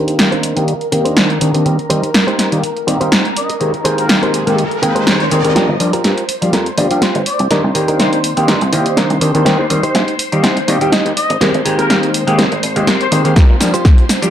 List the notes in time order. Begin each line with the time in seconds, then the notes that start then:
Already playing: D#3 A#3 C4 D4 D#4 G4 A#4 C5 D5 A#5
0.08 closed hi-hat
0.19 snare, closed hi-hat
0.32 D4 D#4 A#4 C5, closed hi-hat
0.43 closed hi-hat
0.56 D#3 A#3 C4 D4 G4, closed hi-hat
0.68 closed hi-hat
0.81 closed hi-hat
0.92 D#3 A#3 C4 G4 D5, muted clean electric guitar stroke, closed hi-hat
1.05 D4 D#4 A#4 C5, closed hi-hat
1.17 snare, closed hi-hat
1.30 closed hi-hat
1.41 D#3 A#3 C4 D4 G4, closed hi-hat
1.54 D#3 A#3 C4 D4 G4, muted clean electric guitar stroke, closed hi-hat
1.65 D#3 G3 A#3 C4 G4, closed hi-hat, riser
1.79 closed hi-hat
1.90 D#3 G3 A#3 C4 D#4 G4 C5, closed hi-hat
2.03 closed hi-hat
2.14 snare, closed hi-hat
2.27 D#4 G4 C5, closed hi-hat
2.39 snare, closed hi-hat
2.52 D#3 G3 A#3 C4 G4, closed hi-hat
2.63 closed hi-hat
2.77 closed hi-hat
2.87 D#3 G3 A#3 C4 G4, muted clean electric guitar stroke, closed hi-hat
3.01 D#3 G3 A#3 C4 D#4 G4 C5, closed hi-hat
3.12 snare, closed hi-hat
3.25 closed hi-hat
3.37 D#5, closed hi-hat
3.50 muted clean electric guitar stroke, closed hi-hat
3.60 D#3 G#3 A#3 C4 G4, closed hi-hat
3.74 closed hi-hat
3.84 D#3 G#3 A#3 C4 G4 G#4 A#4 C5 G5, closed hi-hat
3.98 A#4, closed hi-hat
4.09 snare, closed hi-hat
4.23 G4 G#4 A#4 C5, closed hi-hat
4.34 closed hi-hat
4.46 D#3 G#3 A#3 C4 G4, closed hi-hat
4.58 closed hi-hat
4.71 closed hi-hat
4.82 D#3 G#3 A#3 C4 G5, muted clean electric guitar stroke, closed hi-hat
4.95 G4 G#4 A#4 C5, closed hi-hat
5.07 snare, closed hi-hat
5.20 C5, closed hi-hat
5.31 D#3 G#3 A#3 C4 G4 C5, closed hi-hat
5.44 D#3 G#3 A#3 C4 G4, muted clean electric guitar stroke, closed hi-hat
5.55 F3 G3 A#3 D4 F4 G4 A#4 C5 C6, muted slap bass stroke, snare, closed hi-hat
5.69 G1
5.80 F3 G3 A#3 D4 G4, open hi-hat
5.93 F4 G4 A#4, muted slap bass stroke, closed hi-hat
6.04 G2, snare, closed hi-hat
6.18 closed hi-hat
6.29 open hi-hat
6.41 F3 G3 A#3 D4 G4, closed hi-hat
6.53 F2 F4 G4 A#4, snare, closed hi-hat
6.66 closed hi-hat
6.77 G1 F3 G3 A#3 D4 G4, muted clean electric guitar stroke, open hi-hat
6.90 F3 G3 A#3 D4 G4, closed hi-hat
7.02 F4 G4 C5, snare, closed hi-hat
7.15 G1, closed hi-hat
7.26 D5, open hi-hat
7.39 C2, muted clean electric guitar stroke, closed hi-hat
7.50 D#3 A#3 C4 D4 D#4 G4 A#4, snare, closed hi-hat
7.64 C2
7.74 D#3 A#3 C4 G4 D5, open hi-hat
7.88 D4 D#4 A#4, muted slap bass stroke, closed hi-hat
7.99 C3 C5, snare, closed hi-hat
8.13 C5, closed hi-hat
8.24 open hi-hat
8.37 D#3 A#3 C4 D4 G4, closed hi-hat
8.48 G2 D4 D#4 A#4, snare, closed hi-hat
8.61 C2, closed hi-hat
8.72 C2 D#3 A#3 C4 G4 D5, muted clean electric guitar stroke, open hi-hat
8.86 muted slap bass stroke, closed hi-hat
8.97 C3 D4 D#4 A#4, snare, closed hi-hat
9.10 C2, closed hi-hat
9.21 D#3 A#3 C4 D4 G4, open hi-hat
9.34 D#2 D#3 A#3 C4 D4 G4, muted clean electric guitar stroke, closed hi-hat
9.45 D#3 G3 A#3 C4 D#4 G4 C5, snare, closed hi-hat
9.59 D#2
9.70 D#3 G3 A#3 C4 G4, open hi-hat
9.83 D#4 G4 C5, muted slap bass stroke, closed hi-hat
9.95 A#1, snare, closed hi-hat
10.08 closed hi-hat
10.19 open hi-hat
10.32 D#3 G3 A#3 C4 G4, closed hi-hat
10.43 C2 D#4 G4 C5, snare, closed hi-hat
10.57 closed hi-hat
10.68 D#2 D#3 G3 A#3 C4 G4, muted clean electric guitar stroke, open hi-hat
10.81 D#3 G3 A#3 C4 G4, closed hi-hat
10.92 D#4 G4 D#5, snare, closed hi-hat
11.05 D#2, closed hi-hat
11.17 D#5, open hi-hat
11.30 G#1, muted clean electric guitar stroke, closed hi-hat
11.41 D#3 G#3 A#3 C4 G4 A#4, snare, closed hi-hat
11.54 G#1, closed hi-hat
11.65 D#3 G#3 A#3 C4 G4, open hi-hat
11.78 C4 G4 A#4, muted slap bass stroke, closed hi-hat
11.90 G#2, snare, closed hi-hat
12.03 closed hi-hat
12.14 open hi-hat
12.27 D#3 G#3 A#3 C4 G4, closed hi-hat
12.38 D#2 C4 G4 A#4, snare, closed hi-hat
12.52 G#1, closed hi-hat
12.63 G#1, muted clean electric guitar stroke, open hi-hat
12.76 D#3 G#3 A#3 C4 G4, closed hi-hat
12.87 C4 G4 A#4, snare, closed hi-hat
13.01 C5, closed hi-hat
13.11 G#1 D#3 G#3 A#3 C4 G4 C5, open hi-hat
13.24 D#2 D#3 G#3 A#3 C4 G4, muted clean electric guitar stroke, closed hi-hat
13.36 F4 G4 A#4 C5 C6, kick, snare, closed hi-hat, shaker
13.49 G1
13.60 F3 G3 A#3 D4 G4, snare, open hi-hat, shaker
13.74 F4 G4 C5, muted slap bass stroke, closed hi-hat, shaker
13.85 G2, kick, snare, closed hi-hat, shaker
13.98 closed hi-hat
14.09 snare, open hi-hat, shaker
14.22 F3 G3 A#3 D4 G4, closed hi-hat, shaker